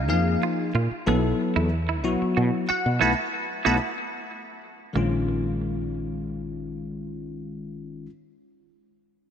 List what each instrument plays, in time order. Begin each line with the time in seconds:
Already playing: fretless electric bass A#1, clean electric guitar D#4
0.08 fretless electric bass F2, tine electric piano F3 A#3 D#4 G#4 F5
0.43 clean electric guitar F4
0.75 fretless electric bass A#2, clean electric guitar F4
0.91 muted fretless electric bass stroke
1.06 fretless electric bass B1, tine electric piano F#3 B3 E4 A4, clean electric guitar B3
1.56 fretless electric bass E2, clean electric guitar E4
1.89 clean electric guitar E4
2.04 fretless electric bass B1, tine electric piano F#3 B3 E4 F#4
2.22 muted fretless electric bass stroke
2.37 fretless electric bass B2, clean electric guitar F#4
2.69 clean electric guitar F#4, tine electric piano F#5, muted fretless electric bass stroke
2.86 fretless electric bass B2
3.01 fretless electric bass B1, tine electric piano A3 B3 E4 F#5 A5 B5, clean electric guitar B3 E4 F#4
3.65 fretless electric bass B1, tine electric piano A3 B3 E4 F#5 A5 B5, clean electric guitar B3 E4 F#4
4.93 fretless electric bass A#1, tine electric piano D#3 G#3 C#4 F4, clean electric guitar A#3